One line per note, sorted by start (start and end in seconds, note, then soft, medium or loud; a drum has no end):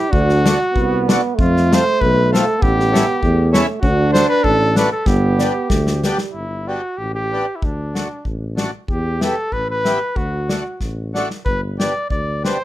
0.00 0.11 E4 loud
0.00 0.13 G4 medium
0.10 0.53 D2 loud
0.10 0.48 D4 loud
0.10 1.07 F#4 medium
0.10 kick medium
0.29 snare soft
0.45 0.58 A3 medium
0.45 0.59 D4 medium
0.45 0.59 F#4 medium
0.45 snare medium
0.45 hi-hat pedal medium
0.74 1.16 C2 medium
0.74 1.36 B3 loud
0.74 kick medium
1.08 1.21 A3 medium
1.08 1.21 D4 medium
1.08 1.21 F#4 medium
1.08 snare medium
1.08 hi-hat pedal soft
1.35 1.79 F2 loud
1.35 2.61 A3 loud
1.35 kick medium
1.40 1.76 F4 loud
1.57 snare soft
1.71 1.84 A3 medium
1.71 1.84 C4 medium
1.71 1.84 F4 medium
1.71 2.02 C5 loud
1.71 snare medium
1.71 hi-hat pedal soft
2.01 2.41 B1 loud
2.01 2.33 B4 loud
2.01 kick medium
2.32 2.45 A3 medium
2.32 2.45 C4 medium
2.32 2.45 F4 medium
2.32 2.64 A4 medium
2.32 snare medium
2.32 hi-hat pedal soft
2.59 3.01 A1 loud
2.59 3.24 B3 medium
2.59 3.54 G4 medium
2.59 kick medium
2.80 snare soft
2.92 3.05 A3 medium
2.92 3.05 C#4 medium
2.92 3.06 E4 medium
2.92 snare medium
2.92 hi-hat pedal soft
3.22 3.62 E2 loud
3.22 3.82 A3 medium
3.22 kick medium
3.53 3.66 A3 medium
3.53 3.66 C#4 medium
3.53 3.66 E4 loud
3.53 snare medium
3.53 hi-hat pedal soft
3.81 4.23 D2 loud
3.81 4.77 D4 loud
3.81 4.12 F#4 medium
3.81 kick medium
4.13 4.27 A3 medium
4.13 4.28 D4 medium
4.13 4.28 F#4 medium
4.13 4.27 C5 loud
4.13 snare medium
4.13 hi-hat pedal soft
4.29 4.45 B4 loud
4.44 4.85 A1 loud
4.44 4.76 A4 loud
4.44 kick medium
4.76 4.90 A3 medium
4.76 4.90 D4 medium
4.76 4.90 F#4 medium
4.76 4.91 B4 medium
4.76 snare medium
4.76 hi-hat pedal soft
4.92 5.08 A4 medium
5.06 5.48 G1 loud
5.06 5.71 B3 medium
5.06 6.04 G4 medium
5.06 kick medium
5.06 snare soft
5.39 5.53 B3 soft
5.39 5.53 D4 soft
5.39 5.53 G4 medium
5.39 snare medium
5.39 hi-hat pedal medium
5.70 6.12 D2 medium
5.70 6.07 A3 medium
5.70 kick medium
5.70 snare medium
5.87 snare medium
6.04 6.35 G3 medium
6.04 6.17 B3 medium
6.04 6.18 D4 medium
6.04 6.18 G4 medium
6.04 snare medium
6.04 hi-hat pedal soft
6.18 snare medium
6.33 6.76 G1 medium
6.33 6.69 E4 medium
6.68 6.81 B3 soft
6.68 6.81 D4 soft
6.68 6.99 F#4 medium
6.68 6.81 G4 soft
6.98 7.40 A1 medium
6.98 7.14 G4 medium
7.14 7.57 G4 medium
7.32 7.45 B3 soft
7.32 7.46 D4 soft
7.32 7.46 G4 medium
7.55 7.66 E4 soft
7.62 8.03 D2 medium
7.62 8.26 D4 medium
7.62 kick medium
7.95 8.08 A3 soft
7.95 8.08 D4 soft
7.95 8.08 F#4 soft
7.95 snare medium
8.25 8.66 A1 medium
8.25 kick soft
8.57 8.70 A3 medium
8.57 8.71 D4 medium
8.57 8.71 F#4 medium
8.57 snare medium
8.88 9.30 E2 medium
8.88 9.25 G4 medium
8.88 kick medium
9.21 9.35 B3 soft
9.21 9.35 E4 soft
9.21 9.35 G4 medium
9.21 9.54 A4 medium
9.21 snare medium
9.52 9.94 A1 medium
9.52 9.69 B4 medium
9.52 kick soft
9.70 10.18 B4 medium
9.85 9.99 B3 soft
9.85 9.99 E4 soft
9.85 9.99 G4 medium
9.85 snare medium
10.16 10.58 D2 medium
10.16 10.81 F#4 medium
10.16 kick medium
10.49 10.63 A3 soft
10.49 10.63 D4 soft
10.49 10.63 F#4 soft
10.49 snare medium
10.81 11.23 A1 medium
10.81 kick soft
10.81 snare soft
11.14 11.28 A3 medium
11.14 11.28 D4 soft
11.14 11.28 F#4 medium
11.14 snare soft
11.30 snare soft
11.45 11.88 G1 medium
11.45 11.60 B4 medium
11.45 kick medium
11.79 11.93 B3 soft
11.79 11.93 D4 soft
11.79 11.93 G4 soft
11.79 12.08 D5 medium
11.79 snare medium
12.10 12.52 D2 medium
12.10 12.41 D5 medium
12.10 kick medium
12.44 12.57 B3 medium
12.44 12.57 D4 medium
12.44 12.58 G4 medium
12.44 12.64 C5 medium
12.44 snare medium